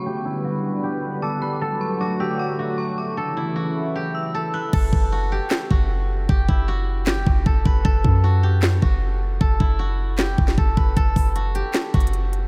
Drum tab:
CC |------------------------------------------------|------------------------------------------------|------------------------------------------------|x-----------------------------------------------|
HH |------------------------------------------------|------------------------------------------------|------------------------------------------------|------------------------------------------------|
CP |------------------------------------------------|------------------------------------------------|------------------------------------------------|------------------------x-----------------------|
SD |------------------------------------------------|------------------------------------------------|------------------------------------------------|------------------------o-----------------------|
BD |------------------------------------------------|------------------------------------------------|------------------------------------------------|o-----o-----------------------o-----------------|

CC |------------------------------------------------|------------------------------------------------|------------------------------------------------|------------------------------------------------|
HH |------------------------------------------------|------------------------------------------------|------------------------------------------------|x-----o-----x-----x-----x-----x-x-x-x-----x-----|
CP |------------------------x-----------------------|------------------------x-----------------------|------------------------x-----------------------|------------------------x-----------------------|
SD |------------------------o-----------------------|------------------------o-----------------------|------------------------o--------o--------------|------------------------o-----------------------|
BD |o-----o-----------------------o-----o-----o-----|o-----o-----------------------o-----------------|o-----o-----------------------o-----o-----o-----|o-----o-----------------------o-----------------|